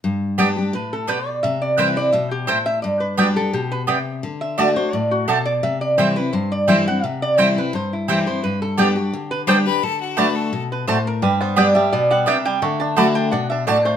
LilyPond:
<<
  \new Staff \with { instrumentName = "Resonator guitar played with a steel bar" } { \time 4/4 \key g \major \tempo 4 = 172 r2 b'8 a'8 b'8 d''8 | e''8 d''8 b'8 d''8 e''8 g'8 c''8 e''8 | d''8 b'8 fis'8 a'8 g'8 b'8 r4 | r8 e''8 d''8 c''8 d''8 fis'8 a'8 d''8 |
e''8 d''8 c''8 b'8 c''8 d''8 e''8 fis''8 | e''8 d''8 c''8 b'8 c''8 e'8 g'8 c''8 | b'8 a'8 g'8 fis'8 g'8 b'8 r4 | r2 r8 b'8 c''8 bes'8 |
b'8 c''8 d''8 e''8 d''8 fis''8 e''8 g''8 | fis''8 a''8 b''8 g''8 fis''8 e''8 d''8 c''8 | }
  \new Staff \with { instrumentName = "Fiddle" } { \time 4/4 \key g \major r1 | r1 | r1 | r1 |
r1 | r1 | r2. c''8 b'8 | a'8 fis'8 b'8 a'8. r4. r16 |
r1 | r1 | }
  \new Staff \with { instrumentName = "Mandolin" } { \time 4/4 \key g \major r4 <b g' d'' g''>16 r4. r16 <b g' d'' g''>16 r8. | r4 <c' e' c'' g''>16 r4. r16 <c' e' c'' g''>16 r8. | r4 <b g' d'' g''>16 r4. r16 <b g' d'' g''>16 r8. | r4 <a fis' d'' a''>16 r4. r16 <a fis' d'' a''>16 r8. |
r4 <c' e' c'' g''>16 r4. r16 <c' e' c'' g''>16 r8. | r4 <c' e' c'' g''>16 r4. r16 <c' e' c'' g''>16 r8. | r4 <b g' d'' g''>16 r4. r16 <b g' d'' g''>16 r8. | r4 <a fis' d'' a''>16 r4. r16 <a fis' d'' a''>16 r8. |
r4 <b g' d'' g''>16 r4. r16 <b g' d'' g''>16 r8. | r4 <a fis' d'' a''>16 r4. r16 <a fis' d'' a''>16 r8. | }
  \new Staff \with { instrumentName = "Five-string banjo" } { \time 4/4 \key g \major r1 | r1 | r1 | r1 |
r1 | r1 | r1 | r1 |
g8 b8 d'8 g8 b8 g8 d'8 g8 | a8 d'8 d'8 d'8 d'8 d'8 d'8 a8 | }
  \new Staff \with { instrumentName = "Steel-string acoustic guitar" } { \time 4/4 \key g \major << { r4 <g b d' g'>8 <d' g'>8 r2 | r4 <e g c' e'>8 <c' e'>8 r2 | r4 <g b d' g'>8 <d' g'>8 r2 | r4 <d a d' fis'>8 <d' fis'>8 r2 |
r4 <e g c' e'>8 <c' e'>8 r4 <e g c' e'>8 <c' e'>8 | r4 <e g c' e'>8 <c' e'>8 r4 <e g c' e'>8 <c' e'>8 | r4 <g b d' g'>8 <d' g'>8 r4 <g b d' g'>8 <d' g'>8 | r4 <d a d' fis'>4 r2 |
r4 <g b d' g'>8 <d' g'>8 r2 | r4 <d a d' fis'>4 r2 | } \\ { g,2 a,4 b,4 | c2 b,4 a,4 | g,2 b,4 c4 | d2 a,4 b,4 |
c2 g,2 | c2 g,2 | g,2 d2 | d2 b,4 a,4 |
g,2 b,4 c4 | d2 b,4 a,4 | } >> }
>>